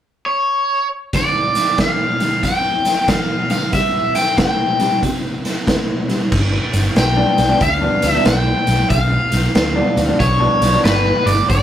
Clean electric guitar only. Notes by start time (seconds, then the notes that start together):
1.13 G2 D3
1.78 G2 E3
2.20 G2 D3
2.44 G2 F3
3.09 G2 E3
3.50 G2 D3
3.73 C3 G3
4.38 C3 A3
4.80 C3 G3
5.03 C3 A#3
5.67 C3 A3
6.08 C3 G3
6.52 muted clean electric guitar stroke
6.95 muted clean electric guitar stroke
7.17 G2 F3 B3 D4
7.49 G2 F3 B3 D4
7.60 muted clean electric guitar stroke
7.81 G2 F3 B3 D4
8.14 G2 F3 B3 D4
8.47 muted clean electric guitar stroke
9.11 muted clean electric guitar stroke
9.54 muted clean electric guitar stroke
9.75 G2 F3 B3 D4
10.08 G2 F3 B3 D4
10.19 muted clean electric guitar stroke
10.40 G2 F3 B3 D4
10.73 G2 F3 B3 D4
11.05 muted clean electric guitar stroke